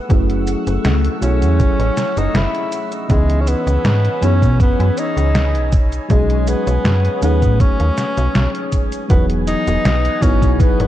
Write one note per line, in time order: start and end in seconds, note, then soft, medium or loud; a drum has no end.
0.00 3.07 A3 medium
0.00 3.06 F#5 medium
0.00 3.07 C#6 medium
0.00 5.68 E6 medium
0.09 0.55 F#1 loud
0.09 1.17 F#3 medium
0.09 1.18 A3 medium
0.09 1.18 C#4 medium
0.09 1.19 E4 medium
0.09 1.19 G#4 loud
0.09 kick loud
0.09 closed hi-hat medium
0.09 cabasa soft
0.30 closed hi-hat soft
0.47 closed hi-hat medium
0.47 cabasa medium
0.67 0.78 F#1 medium
0.67 closed hi-hat soft
0.67 cabasa soft
0.85 1.09 C#2 medium
0.85 snare loud
0.85 closed hi-hat medium
0.85 cabasa soft
1.05 closed hi-hat soft
1.21 1.43 B1 medium
1.21 3.05 F#3 medium
1.21 3.05 A3 medium
1.21 3.05 C#4 medium
1.21 2.20 C#4 loud
1.21 3.06 E4 medium
1.21 3.06 G#4 loud
1.21 closed hi-hat medium
1.21 cabasa medium
1.42 1.64 E2 loud
1.42 closed hi-hat soft
1.42 cabasa soft
1.60 kick loud
1.60 closed hi-hat medium
1.60 cabasa soft
1.79 1.90 A1 medium
1.79 closed hi-hat soft
1.97 snare medium
1.97 closed hi-hat medium
1.97 cabasa medium
2.17 2.28 F#1 medium
2.17 2.38 D#4 loud
2.17 closed hi-hat soft
2.17 cabasa soft
2.34 2.47 F#1 loud
2.34 2.93 E4 loud
2.34 snare loud
2.34 closed hi-hat medium
2.34 cabasa soft
2.55 closed hi-hat soft
2.72 closed hi-hat medium
2.72 cabasa medium
2.92 closed hi-hat soft
2.92 cabasa soft
3.08 3.55 C#2 loud
3.08 4.17 E3 medium
3.08 3.42 G#3 loud
3.08 4.18 B3 medium
3.08 4.18 C#4 medium
3.08 4.18 D#4 medium
3.08 4.19 G#4 loud
3.08 5.70 C#5 medium
3.08 9.06 G#5 medium
3.08 5.70 B5 medium
3.08 kick loud
3.08 closed hi-hat medium
3.08 cabasa soft
3.30 closed hi-hat soft
3.41 3.49 C#4 medium
3.47 4.25 B3 loud
3.47 closed hi-hat medium
3.47 cabasa medium
3.67 3.78 C#2 medium
3.67 closed hi-hat soft
3.67 cabasa soft
3.85 4.09 G#2 medium
3.85 snare loud
3.85 closed hi-hat medium
3.85 cabasa soft
4.05 closed hi-hat soft
4.21 4.44 F#2 medium
4.21 5.69 E3 loud
4.21 5.70 B3 medium
4.21 5.70 C#4 medium
4.21 4.60 C#4 loud
4.21 5.71 D#4 medium
4.21 5.71 G#4 loud
4.21 closed hi-hat medium
4.21 cabasa medium
4.42 4.59 B2 loud
4.42 kick medium
4.42 closed hi-hat soft
4.42 cabasa soft
4.60 4.76 F#2 soft
4.60 5.00 B3 loud
4.60 kick loud
4.60 closed hi-hat medium
4.60 cabasa soft
4.80 4.91 F#2 medium
4.80 closed hi-hat soft
4.98 5.73 D#4 loud
4.98 closed hi-hat medium
4.98 cabasa medium
5.17 5.56 C#2 medium
5.17 closed hi-hat soft
5.17 cabasa soft
5.35 snare loud
5.35 closed hi-hat medium
5.35 cabasa soft
5.55 5.99 B1 medium
5.55 closed hi-hat soft
5.72 9.07 C#5 medium
5.72 9.07 D#6 loud
5.72 kick loud
5.72 closed hi-hat medium
5.72 cabasa medium
5.92 closed hi-hat soft
5.92 cabasa soft
6.08 6.55 B1 loud
6.08 7.17 F#3 medium
6.08 7.18 G#3 medium
6.08 6.50 G#3 medium
6.08 7.18 C#4 medium
6.08 7.18 D#4 medium
6.08 7.19 G#4 loud
6.08 kick loud
6.08 closed hi-hat medium
6.08 cabasa soft
6.30 closed hi-hat soft
6.47 7.23 B3 loud
6.47 closed hi-hat loud
6.47 cabasa medium
6.67 6.78 B1 medium
6.67 closed hi-hat soft
6.67 cabasa soft
6.85 7.09 F#2 medium
6.85 snare loud
6.85 closed hi-hat medium
6.85 cabasa soft
7.05 closed hi-hat soft
7.21 7.44 D#2 medium
7.21 9.05 F#3 loud
7.21 9.05 A3 medium
7.21 7.62 B3 loud
7.21 9.06 C#4 medium
7.21 9.06 D#4 medium
7.21 9.06 G#4 loud
7.21 closed hi-hat medium
7.21 cabasa medium
7.42 7.65 A2 loud
7.42 kick medium
7.42 closed hi-hat soft
7.42 cabasa soft
7.60 8.73 C#4 loud
7.60 kick loud
7.60 closed hi-hat medium
7.60 cabasa soft
7.80 7.91 D#2 medium
7.80 closed hi-hat soft
7.98 snare medium
7.98 closed hi-hat medium
7.98 cabasa medium
8.17 8.28 B1 medium
8.17 closed hi-hat soft
8.17 cabasa soft
8.35 8.47 B1 loud
8.35 snare loud
8.35 closed hi-hat medium
8.35 cabasa soft
8.55 closed hi-hat soft
8.72 kick medium
8.72 closed hi-hat medium
8.72 cabasa medium
8.92 closed hi-hat soft
8.92 cabasa soft
9.08 9.55 E1 medium
9.08 10.18 E3 medium
9.08 10.17 F#3 medium
9.08 10.18 B3 medium
9.08 9.26 B3 loud
9.08 10.18 D#4 medium
9.08 10.19 G#4 loud
9.08 10.87 B4 medium
9.08 10.87 F#5 medium
9.08 10.87 G#5 medium
9.08 kick loud
9.08 closed hi-hat medium
9.08 cabasa soft
9.30 closed hi-hat soft
9.47 10.24 D#4 loud
9.47 closed hi-hat loud
9.47 cabasa medium
9.67 9.78 E1 medium
9.67 closed hi-hat soft
9.67 cabasa soft
9.85 10.09 B1 medium
9.85 snare loud
9.85 closed hi-hat medium
9.85 cabasa soft
10.05 closed hi-hat soft
10.20 10.44 G#1 medium
10.20 10.87 F#3 loud
10.20 10.87 B3 medium
10.20 10.53 C#4 loud
10.20 10.87 D#4 medium
10.20 10.87 E4 medium
10.20 10.87 G#4 loud
10.20 kick loud
10.20 closed hi-hat medium
10.20 cabasa medium
10.42 10.59 B1 loud
10.42 kick medium
10.42 closed hi-hat soft
10.42 cabasa soft
10.53 10.62 C#4 medium
10.60 10.76 G#1 soft
10.60 10.87 B3 medium
10.60 kick loud
10.60 closed hi-hat medium
10.60 cabasa soft
10.80 10.87 G#1 medium
10.80 closed hi-hat soft